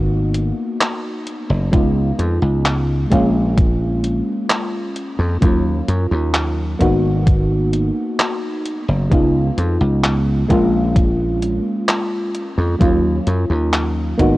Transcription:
Already playing: G#1 A#3 B3 D#4 F#4
0.35 closed hi-hat
0.81 clap, closed hi-hat
1.27 closed hi-hat
1.50 F#1
1.71 C#2 G#3 B3 D#4 F4, kick, closed hi-hat
2.19 F2, closed hi-hat
2.42 C#2
2.65 clap, closed hi-hat
3.10 A#1 G#3 A#3 C#4 F4, kick, closed hi-hat
3.58 kick, closed hi-hat
4.04 closed hi-hat
4.50 clap, closed hi-hat
4.96 closed hi-hat
5.19 F2
5.41 D#2 F#3 A#3 C#4 F4, kick, closed hi-hat
5.88 F#2, closed hi-hat
6.11 D#2
6.34 clap, closed hi-hat
6.79 G#1 A#3 B3 D#4 F#4, kick, closed hi-hat
7.27 kick, closed hi-hat
7.73 closed hi-hat
8.19 clap, closed hi-hat
8.65 closed hi-hat
8.88 F#1
9.10 C#2 G#3 B3 D#4 F4, kick, closed hi-hat
9.58 F2, closed hi-hat
9.81 C#2
10.04 clap, closed hi-hat
10.48 A#1 G#3 A#3 C#4 F4, kick, closed hi-hat
10.96 kick, closed hi-hat
11.42 closed hi-hat
11.89 clap, closed hi-hat
12.35 closed hi-hat
12.58 F2
12.79 D#2 F#3 A#3 C#4 F4, kick, closed hi-hat
13.27 F#2, closed hi-hat
13.50 D#2
13.73 clap, closed hi-hat
14.17 G#1 A#3 B3 D#4 F#4, kick, closed hi-hat

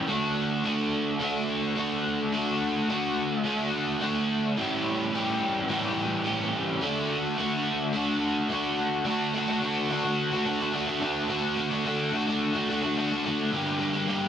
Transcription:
0.08 D3 A3 D4 F#4
0.64 D3 A3 D4 F#4
1.20 D3 A3 D4 F#4
1.76 D3 A3 D4 F#4
2.32 D3 A3 D4 F#4
2.88 D3 A3 D4 F#4
3.44 D3 A3 D4 F#4
4.00 D3 A3 D4 F#4
4.57 A2 E3 G3 C#4 G4
5.13 E3 G3 C#4 G4
5.69 A2 E3 G3 C#4 G4
6.24 E3 G3 C#4 G4
6.81 D3 A3 D4 F#4
7.37 D3 A3 D4 F#4
7.93 D3 A3 D4 F#4
8.49 D3 A3 D4 F#4
9.05 D3 A3 D4 F#4
9.34 D3 A3 D4 F#4
9.47 A3 D4 F#4
9.61 D3 A3 D4 F#4
9.90 D3 A3 D4 F#4
10.04 A3 D4 F#4
10.31 A3 D4 F#4
10.45 D3 A3 D4 F#4
10.60 A3 D4 F#4
10.73 D3 A3 D4 F#4
10.87 A3 D4 F#4
11.00 D3 A3 D4 F#4
11.28 D3 A3 D4 F#4
11.56 D3 A3 D4 F#4
11.71 A3 D4 F#4
11.84 D3 A3 D4 F#4
12.12 D3 A3 D4 F#4
12.26 A3 D4 F#4
12.54 A3 D4 F#4
12.68 D3 A3 D4 F#4
12.82 A3 D4 F#4
12.96 D3 A3 D4 F#4
13.10 A3 D4 F#4
13.24 D3 A3 D4 F#4
13.52 G2 D3 G3 A#3 D4 G4
13.80 G3 A#3 D4 G4
13.93 G3 A#3 D4 G4
14.06 G2 D3 G3 A#3 D4 G4

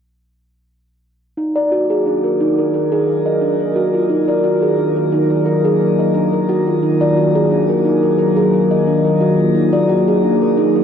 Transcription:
1.37 D#3 F#3 A#3 D#4 A#4
1.56 D5
1.72 F#4
1.90 G#4
2.06 D4
2.24 A#4
2.40 D#4
2.58 A#4
2.74 A#4
2.92 G#4
3.07 A#4
3.26 D#5
3.41 D4
3.60 A#4
3.76 F#4
3.94 F4
4.09 D#4
4.28 D5
4.44 F#4
4.62 G#4
4.78 D4
4.96 A#4
5.12 D#4
5.30 A#4
5.46 A#4
5.65 G#4
5.80 A#4
5.99 D#5
6.14 D4
6.33 A#4
6.49 F#4
6.67 F4
6.83 D#4 G#4
7.01 D5
7.17 F#4
7.35 G#4
7.51 D4
7.69 A#4
7.85 D#4
8.03 A#4
8.19 A#4
8.37 G#4
8.53 A#4
8.71 D#5
8.87 D4
9.05 A#4
9.21 F#4
9.39 F4
9.55 D#4
9.73 D5
9.89 F#4
10.08 G#4
10.23 D4
10.42 A#4
10.57 D#4
10.75 A#4

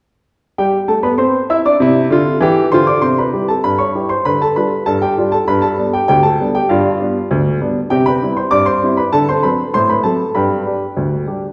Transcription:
0.58 G3 G4 G5
0.88 A3 A4 A5
1.03 B3 B4 B5
1.18 C4 C5 C6
1.50 E4 E5 E6
1.65 D4 D5 D6
1.80 C3 E4
2.10 D3 F4
2.41 E3 G4
2.72 D3 F4 C5 C6
2.87 D5 D6
3.02 C3 C5 C6
3.18 B4 B5
3.33 G3 E4 G4
3.48 A4 A5
3.64 G2 B4 B5
3.78 C#5 C#6
3.95 G3 E4 G4
4.09 C5 C6
4.25 D3 B4 B5
4.42 A4 A5
4.56 G3 D4 F4 B4 B5
4.86 G2 A4 A5
5.02 G4 G5
5.18 G3 D4 F4
5.32 A4 A5
5.48 G2 B4 B5
5.62 A4 A5
5.78 G3 B3 D4
5.93 G4 G5
6.08 D2 G4 G5
6.23 A4 A5
6.40 G3 B3 D4
6.55 G4 G5
6.69 G2 F4 D5 F5
7.00 G3 B3 D4
7.31 D2
7.61 G3 B3 D4
7.90 C3 G4 G5
8.06 B4 B5
8.22 G3 C4 E4
8.37 C5 C6
8.51 G2 D5 D6
8.66 C5 C6
8.83 G3 C4 E4
8.97 B4 B5
9.13 D3 A4 A5
9.29 C5 C6
9.43 F#3 C4 A4 B4 B5
9.74 A2 C5 C6
9.89 B4 B5
10.03 F#3 C4 A4 A5
10.35 G2 B4 G5 B5
10.66 G3 D4 G4
10.97 D2
11.27 G3 D4 G4

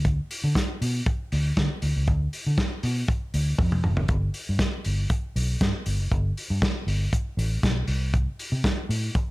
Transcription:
Already playing: D2
0.05 kick, closed hi-hat
0.31 open hi-hat
0.44 D3
0.55 kick, snare, closed hi-hat
0.81 B2, open hi-hat
1.06 kick, closed hi-hat
1.32 D2, open hi-hat
1.57 D3, kick, snare, closed hi-hat
1.82 D2, open hi-hat
1.96 C#2
2.07 D2, kick, closed hi-hat
2.33 open hi-hat
2.47 D3
2.58 kick, snare, closed hi-hat
2.83 B2, open hi-hat
3.08 kick, closed hi-hat
3.34 D2, open hi-hat
3.58 F2, kick, high tom
3.72 mid tom
3.84 F#1, mid tom
3.97 floor tom
4.08 G1, kick, closed hi-hat
4.34 open hi-hat
4.49 G2
4.59 kick, snare, closed hi-hat
4.85 G1, open hi-hat
5.10 kick, closed hi-hat
5.36 B1, open hi-hat
5.61 G2, kick, snare, closed hi-hat
5.86 G1, open hi-hat
5.99 F#1
6.12 G1, kick, closed hi-hat
6.37 open hi-hat
6.50 G2
6.62 kick, snare, closed hi-hat
6.87 G1, open hi-hat
7.13 kick, closed hi-hat
7.37 A1, open hi-hat
7.63 B1, kick, snare, closed hi-hat
7.88 C2, open hi-hat
8.14 kick, closed hi-hat
8.39 open hi-hat
8.52 C3
8.64 kick, snare, closed hi-hat
8.89 A2, open hi-hat
9.15 kick, closed hi-hat

